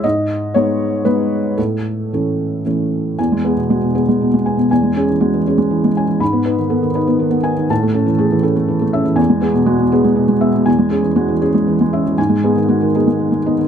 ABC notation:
X:1
M:3/4
L:1/16
Q:1/4=119
K:E
V:1 name="Felt piano"
d4 c4 B4 | A8 z4 | g2 G2 F2 G4 g2 | g2 G2 F2 G2 E,2 g2 |
b2 B2 A2 B2 D,2 g2 | a2 A2 G2 A4 e2 | g2 G2 F2 G4 e2 | g2 G2 F2 G4 e2 |
g2 G2 F2 G4 d2 |]
V:2 name="Felt piano" clef=bass
G,,4 [G,B,D]4 [G,B,D]4 | A,,4 [E,A,C]4 [E,A,C]4 | E,, G, B, B,, G, B,, B, G, B,, G, B, B,, | E,, G, C E, G, E, C G,2 G, C E, |
G,, B, D D, B, D, D B,2 B, D D, | A,, A, C E, A, E, C A, E, A, C E, | E,, G, B, B,, G, B,, B, G, B,, G, B, B,, | E,, G, C E, G, E, C G, E, G, C E, |
G,, G, [B,D] D, G, D, [B,D] G, D, G, [B,D] D, |]